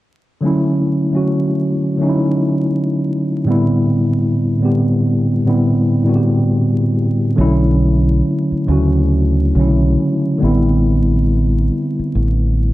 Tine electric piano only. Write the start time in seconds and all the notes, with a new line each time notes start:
0.41 D3 F#3 A3
0.45 C#4 E4
1.11 D3 F#3 A3
1.15 C#4 F#4
1.97 D3 F#3 A3
2.02 C#4 D#4
2.09 E4
3.44 A2 D3 G3 B3
3.49 C4 E4
4.59 A2 D3 G3 B3
4.64 C4 G4
5.44 A2 D3 G3 B3
5.48 C4 E4
6.03 A2 D3 G3 B3
6.08 C4 F#4
6.16 G4
7.36 D3 F#3 A3
7.40 C#4 E4
8.66 C#3 F#3 A3 C#4
8.71 D3 F#4
9.55 D3 F#3 A3
9.59 C#4 E4
10.38 D3 G3 B3
10.43 C4 E4